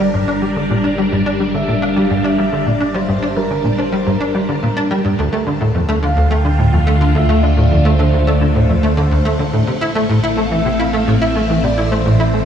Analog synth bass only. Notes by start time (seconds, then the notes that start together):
0.14 G2
0.28 D4
0.42 G3
0.56 D3
0.70 A#2
0.84 D4
0.98 G3
1.12 G2
1.26 D4
1.40 G3
1.54 D3
1.68 A#2
1.82 D4
1.96 G3
2.10 G2
2.24 D4
2.38 G3
2.52 D3
2.66 A#2
2.80 D4
2.94 G3
3.08 G2
3.22 D4
3.36 G3
3.51 D3
3.64 A#2
3.78 D4
3.92 G3
4.06 G2
4.20 D4
4.35 G3
4.49 D3
4.63 A#2
4.77 D4
4.91 G3
5.05 G2
5.19 D2
5.33 A3
5.47 D3
5.61 A2
5.75 F2
5.89 A3
6.03 D3
6.17 D2
6.31 A3
6.45 D3
6.59 A2
6.73 F2
6.87 A3
7.01 D3
7.15 D2
7.29 A3
7.43 D3
7.57 A2
7.71 F2
7.85 A3
7.99 D3
8.13 D2
8.27 A3
8.41 D3
8.55 A2
8.69 F2
8.83 A3
8.97 D3
9.11 D2
9.25 A3
9.39 D3
9.53 A2
9.67 C3
9.81 E4
9.95 A3
10.09 A2
10.23 E4
10.37 A3
10.51 E3
10.65 C3
10.79 E4
10.93 A3
11.07 A2
11.22 E4
11.36 A3
11.50 E3
11.64 C3
11.78 E4
11.92 A3
12.06 A2
12.20 E4
12.34 A3